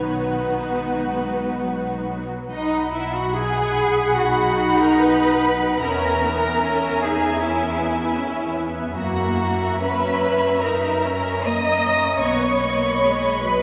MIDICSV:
0, 0, Header, 1, 6, 480
1, 0, Start_track
1, 0, Key_signature, 5, "major"
1, 0, Tempo, 879765
1, 1374, Time_signature, 4, 2, 24, 8
1, 1374, Tempo, 829876
1, 2814, Tempo, 810811
1, 3774, Tempo, 781250
1, 5214, Tempo, 859599
1, 5694, Tempo, 784314
1, 6174, Tempo, 841515
1, 6654, Tempo, 785340
1, 7978, End_track
2, 0, Start_track
2, 0, Title_t, "Violin section"
2, 0, Program_c, 0, 48
2, 0, Note_on_c, 0, 71, 46
2, 1138, Note_off_c, 0, 71, 0
2, 1378, Note_on_c, 0, 75, 63
2, 1603, Note_off_c, 0, 75, 0
2, 1620, Note_on_c, 0, 76, 62
2, 1739, Note_off_c, 0, 76, 0
2, 1746, Note_on_c, 0, 78, 59
2, 1864, Note_off_c, 0, 78, 0
2, 1866, Note_on_c, 0, 80, 76
2, 2331, Note_off_c, 0, 80, 0
2, 2338, Note_on_c, 0, 78, 59
2, 2688, Note_off_c, 0, 78, 0
2, 2693, Note_on_c, 0, 82, 65
2, 2812, Note_off_c, 0, 82, 0
2, 2812, Note_on_c, 0, 83, 74
2, 3295, Note_on_c, 0, 82, 70
2, 3298, Note_off_c, 0, 83, 0
2, 3998, Note_off_c, 0, 82, 0
2, 4013, Note_on_c, 0, 80, 70
2, 4250, Note_on_c, 0, 76, 62
2, 4254, Note_off_c, 0, 80, 0
2, 4966, Note_off_c, 0, 76, 0
2, 5208, Note_on_c, 0, 78, 61
2, 5669, Note_off_c, 0, 78, 0
2, 5691, Note_on_c, 0, 83, 73
2, 6172, Note_off_c, 0, 83, 0
2, 6174, Note_on_c, 0, 82, 59
2, 6644, Note_off_c, 0, 82, 0
2, 6651, Note_on_c, 0, 87, 76
2, 7125, Note_on_c, 0, 85, 65
2, 7128, Note_off_c, 0, 87, 0
2, 7838, Note_off_c, 0, 85, 0
2, 7853, Note_on_c, 0, 83, 65
2, 7978, Note_off_c, 0, 83, 0
2, 7978, End_track
3, 0, Start_track
3, 0, Title_t, "Violin section"
3, 0, Program_c, 1, 48
3, 0, Note_on_c, 1, 66, 47
3, 0, Note_on_c, 1, 71, 48
3, 1239, Note_off_c, 1, 66, 0
3, 1240, Note_off_c, 1, 71, 0
3, 1371, Note_on_c, 1, 78, 64
3, 1371, Note_on_c, 1, 83, 68
3, 3273, Note_off_c, 1, 78, 0
3, 3273, Note_off_c, 1, 83, 0
3, 3299, Note_on_c, 1, 80, 62
3, 3301, Note_on_c, 1, 76, 63
3, 5189, Note_off_c, 1, 80, 0
3, 5190, Note_off_c, 1, 76, 0
3, 5212, Note_on_c, 1, 82, 57
3, 5213, Note_on_c, 1, 76, 61
3, 7105, Note_off_c, 1, 76, 0
3, 7105, Note_off_c, 1, 82, 0
3, 7124, Note_on_c, 1, 75, 63
3, 7126, Note_on_c, 1, 83, 63
3, 7978, Note_off_c, 1, 75, 0
3, 7978, Note_off_c, 1, 83, 0
3, 7978, End_track
4, 0, Start_track
4, 0, Title_t, "Cello section"
4, 0, Program_c, 2, 48
4, 0, Note_on_c, 2, 51, 45
4, 392, Note_off_c, 2, 51, 0
4, 415, Note_on_c, 2, 56, 47
4, 889, Note_on_c, 2, 54, 46
4, 891, Note_off_c, 2, 56, 0
4, 1372, Note_on_c, 2, 63, 76
4, 1373, Note_off_c, 2, 54, 0
4, 1600, Note_off_c, 2, 63, 0
4, 1611, Note_on_c, 2, 64, 70
4, 1734, Note_off_c, 2, 64, 0
4, 1742, Note_on_c, 2, 66, 77
4, 1854, Note_on_c, 2, 68, 91
4, 1863, Note_off_c, 2, 66, 0
4, 2335, Note_off_c, 2, 68, 0
4, 2335, Note_on_c, 2, 66, 73
4, 2694, Note_off_c, 2, 66, 0
4, 2699, Note_on_c, 2, 70, 77
4, 2815, Note_off_c, 2, 70, 0
4, 2815, Note_on_c, 2, 71, 81
4, 3297, Note_on_c, 2, 70, 84
4, 3299, Note_off_c, 2, 71, 0
4, 3999, Note_off_c, 2, 70, 0
4, 4012, Note_on_c, 2, 68, 75
4, 4253, Note_on_c, 2, 64, 66
4, 4254, Note_off_c, 2, 68, 0
4, 4954, Note_off_c, 2, 64, 0
4, 5213, Note_on_c, 2, 66, 77
4, 5671, Note_off_c, 2, 66, 0
4, 5694, Note_on_c, 2, 71, 84
4, 6173, Note_off_c, 2, 71, 0
4, 6173, Note_on_c, 2, 70, 71
4, 6651, Note_on_c, 2, 75, 92
4, 6653, Note_off_c, 2, 70, 0
4, 7125, Note_on_c, 2, 73, 78
4, 7128, Note_off_c, 2, 75, 0
4, 7852, Note_off_c, 2, 73, 0
4, 7854, Note_on_c, 2, 71, 74
4, 7978, Note_off_c, 2, 71, 0
4, 7978, End_track
5, 0, Start_track
5, 0, Title_t, "Viola section"
5, 0, Program_c, 3, 48
5, 0, Note_on_c, 3, 59, 45
5, 0, Note_on_c, 3, 63, 48
5, 1237, Note_off_c, 3, 59, 0
5, 1237, Note_off_c, 3, 63, 0
5, 2340, Note_on_c, 3, 63, 78
5, 3276, Note_off_c, 3, 63, 0
5, 3299, Note_on_c, 3, 61, 65
5, 3538, Note_off_c, 3, 61, 0
5, 3539, Note_on_c, 3, 59, 64
5, 3773, Note_off_c, 3, 59, 0
5, 3775, Note_on_c, 3, 61, 65
5, 4011, Note_off_c, 3, 61, 0
5, 4012, Note_on_c, 3, 63, 64
5, 4254, Note_off_c, 3, 63, 0
5, 4255, Note_on_c, 3, 61, 62
5, 4487, Note_on_c, 3, 59, 61
5, 4494, Note_off_c, 3, 61, 0
5, 4728, Note_off_c, 3, 59, 0
5, 4728, Note_on_c, 3, 61, 62
5, 4967, Note_off_c, 3, 61, 0
5, 4968, Note_on_c, 3, 59, 63
5, 5213, Note_off_c, 3, 59, 0
5, 5214, Note_on_c, 3, 58, 62
5, 5684, Note_off_c, 3, 58, 0
5, 5688, Note_on_c, 3, 61, 66
5, 6170, Note_off_c, 3, 61, 0
5, 6173, Note_on_c, 3, 63, 64
5, 6412, Note_off_c, 3, 63, 0
5, 6416, Note_on_c, 3, 61, 60
5, 6655, Note_off_c, 3, 61, 0
5, 6658, Note_on_c, 3, 58, 61
5, 6892, Note_on_c, 3, 61, 61
5, 6896, Note_off_c, 3, 58, 0
5, 7129, Note_off_c, 3, 61, 0
5, 7132, Note_on_c, 3, 59, 66
5, 7366, Note_off_c, 3, 59, 0
5, 7372, Note_on_c, 3, 58, 59
5, 7614, Note_off_c, 3, 58, 0
5, 7616, Note_on_c, 3, 56, 61
5, 7856, Note_off_c, 3, 56, 0
5, 7861, Note_on_c, 3, 54, 66
5, 7978, Note_off_c, 3, 54, 0
5, 7978, End_track
6, 0, Start_track
6, 0, Title_t, "Double bass section"
6, 0, Program_c, 4, 48
6, 0, Note_on_c, 4, 35, 44
6, 1239, Note_off_c, 4, 35, 0
6, 1379, Note_on_c, 4, 35, 61
6, 3277, Note_off_c, 4, 35, 0
6, 3296, Note_on_c, 4, 40, 59
6, 5187, Note_off_c, 4, 40, 0
6, 5217, Note_on_c, 4, 42, 59
6, 7107, Note_off_c, 4, 42, 0
6, 7134, Note_on_c, 4, 35, 58
6, 7978, Note_off_c, 4, 35, 0
6, 7978, End_track
0, 0, End_of_file